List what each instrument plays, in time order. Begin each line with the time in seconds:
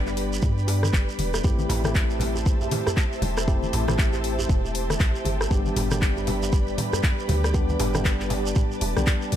Already playing: 808-style bass G1, tine electric piano G3 B3 D4 G4, ambient pad G4 B4 D5 B5
0.07 clap, djembe tone, shekere
0.17 open hi-hat
0.33 shekere
0.42 808-style bass G2, kick, mid tom, djembe tone, high conga, shekere
0.58 shekere
0.67 open hi-hat, djembe slap, djembe tone
0.83 cross-stick, high conga, shekere
0.93 808-style bass G1, kick, clap, djembe tone, shekere
1.09 shekere
1.19 808-style bass E1, open hi-hat, high conga
1.34 cross-stick, djembe tone, shekere
1.44 808-style bass A1, tine electric piano A3 C4 E4 G4, ambient pad G4 C5 E5 A5, kick, djembe tone, djembe bass, shekere
1.59 high conga, shekere
1.69 808-style bass A1, mid tom, open hi-hat, djembe slap, djembe tone
1.84 tine electric piano A3 C4 E4 G4, cross-stick, mid tom, high conga, shekere
1.95 kick, clap, djembe tone, shekere
2.10 shekere
2.20 open hi-hat, djembe slap, low conga
2.36 djembe tone, shekere
2.46 kick, shekere
2.61 djembe tone, shekere
2.71 mid tom, open hi-hat, djembe slap, high conga
2.86 cross-stick, djembe tone, djembe bass, shekere
2.97 kick, clap, shekere
3.12 shekere
3.22 808-style bass E1, open hi-hat, djembe tone, high conga, low conga
3.37 cross-stick, shekere
3.48 tine electric piano A3 C4 E4 G4, kick, djembe tone, djembe bass, shekere
3.63 high conga, shekere
3.73 808-style bass A1, mid tom, open hi-hat, djembe slap, djembe tone
3.88 tine electric piano A3 C4 E4 G4, cross-stick, mid tom, high conga, shekere
3.98 kick, clap, shekere
4.13 clap, djembe tone, shekere
4.24 open hi-hat
4.39 djembe tone, shekere
4.49 808-style bass E1, kick, mid tom, shekere
4.65 djembe tone, shekere
4.75 open hi-hat
4.90 cross-stick, high conga, shekere
5.00 808-style bass A1, kick, clap, djembe tone, shekere
5.15 shekere
5.25 808-style bass G1, open hi-hat, djembe tone, high conga
5.41 cross-stick, shekere
5.51 808-style bass G1, tine electric piano G3 B3 D4 G4, ambient pad B4 D5 B5, kick, djembe tone, djembe bass, shekere
5.66 high conga, shekere
5.76 808-style bass G1, mid tom, open hi-hat, djembe slap
5.91 tine electric piano G3 B3 D4 G4, cross-stick, mid tom, high conga, djembe tone, shekere
6.02 kick, clap, shekere
6.17 djembe tone, shekere
6.27 open hi-hat, djembe slap, low conga
6.43 djembe tone, shekere
6.53 kick, shekere
6.67 shekere
6.78 mid tom, open hi-hat, djembe slap, djembe tone, high conga
6.93 cross-stick, djembe bass, shekere
7.03 kick, clap, djembe tone, shekere
7.19 shekere
7.28 808-style bass D2, open hi-hat, djembe tone, high conga, low conga
7.44 cross-stick, shekere
7.54 tine electric piano G3 B3 D4 G4, ambient pad A5, kick, djembe bass, shekere
7.69 djembe tone, high conga, shekere
7.80 808-style bass G1, mid tom, open hi-hat, djembe slap
7.94 tine electric piano G3 B3 D4 G4, cross-stick, mid tom, djembe tone, high conga, shekere
8.05 kick, clap, shekere
8.20 clap, djembe tone, shekere
8.30 open hi-hat, djembe slap, low conga
8.46 shekere
8.55 kick, mid tom, djembe tone, shekere
8.72 shekere
8.81 808-style bass E1, open hi-hat, djembe tone
8.97 808-style bass B1, tine electric piano G3 B3 D4 G4, cross-stick, high conga, shekere
9.06 kick, clap, djembe tone, shekere
9.22 shekere
9.32 808-style bass D2, open hi-hat, high conga